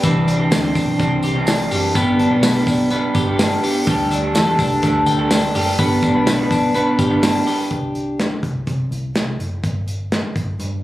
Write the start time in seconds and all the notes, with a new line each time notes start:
Already playing: D4
0.03 C2 E3 G3 C4 D4 G4, kick, hi-hat pedal, open hi-hat, tambourine
0.27 C2 D4, hi-hat pedal, open hi-hat, tambourine
0.39 G3 C4 D4 G4
0.51 D2 C4, snare, hi-hat pedal, open hi-hat, tambourine
0.64 G3 C4 D4 G4
0.75 B1 D4, kick, hi-hat pedal, open hi-hat, tambourine
0.99 C2 G3 C4 D4 G4, kick, hi-hat pedal, open hi-hat, tambourine
1.23 C2 G4, hi-hat pedal, open hi-hat, tambourine
1.35 C3 E3 G3 C4 D4 G4
1.47 D4, snare, hi-hat pedal, open hi-hat, tambourine
1.71 F#1 G3 C4 D4 G4, hi-hat pedal, open hi-hat, tambourine
1.95 G1 G3 B3 D4 G4, kick, hi-hat pedal, open hi-hat, tambourine
2.19 D4, hi-hat pedal, open hi-hat
2.31 B1 G3 B3 D4 G4
2.43 B3, snare, hi-hat pedal, open hi-hat, tambourine
2.55 G3 B3 D4 G4
2.67 D4, kick, hi-hat pedal, open hi-hat, tambourine
2.90 G3 B3 D4 G4, hi-hat pedal, open hi-hat, tambourine
3.15 G1 G4, kick, hi-hat pedal, open hi-hat, tambourine
3.27 G2 D3 G3 B3 D4 G4
3.39 D4, snare, hi-hat pedal, open hi-hat, tambourine
3.62 G3 B3 D4 G4, hi-hat pedal, open hi-hat, tambourine
3.86 D2 G3 D4 G4 A4, kick, hi-hat pedal, open hi-hat, tambourine
4.10 D2 D4, hi-hat pedal, open hi-hat, tambourine
4.22 D4 G4 A4
4.34 E2 A3, snare, hi-hat pedal, open hi-hat, tambourine
4.46 D4 G4 A4
4.59 C2 D4, kick, hi-hat pedal, open hi-hat, tambourine
4.82 D2 G3 A3 D4 G4 A4, kick, hi-hat pedal, open hi-hat, tambourine
5.06 D2 G4, hi-hat pedal, open hi-hat, tambourine
5.19 D3 G3 D4 G4 A4
5.31 D4, snare, hi-hat pedal, open hi-hat, tambourine
5.55 F#1 G3 D4 G4 A4, hi-hat pedal, open hi-hat, tambourine
5.78 G1 G3 B3 D4 G4 B4, kick, hi-hat pedal, open hi-hat, tambourine
6.02 D4, kick, hi-hat pedal, open hi-hat, tambourine
6.14 B1 G3 B3 D4 B4
6.27 B3, snare, hi-hat pedal, open hi-hat, tambourine
6.38 G3 B3 D4 B4
6.51 D4, kick, hi-hat pedal, open hi-hat, tambourine
6.74 G3 B3 D4 B4, hi-hat pedal, open hi-hat, tambourine
6.99 G1 G4, kick, hi-hat pedal, open hi-hat, tambourine
7.10 G2 D3 G3 B3 D4 B4
7.23 D4, snare, hi-hat pedal, open hi-hat, tambourine
7.45 G3 B3 D4 G4 B4, hi-hat pedal, open hi-hat, tambourine
7.71 C2, kick, closed hi-hat
7.95 closed hi-hat
8.20 snare, closed hi-hat
8.43 C2, kick, closed hi-hat
8.67 C3, kick, closed hi-hat
8.91 C2, closed hi-hat
9.16 C2, snare, closed hi-hat
9.40 F#1, closed hi-hat
9.63 G1, kick, closed hi-hat
9.88 closed hi-hat
10.12 snare, closed hi-hat
10.36 G1, kick, closed hi-hat
10.60 G2, closed hi-hat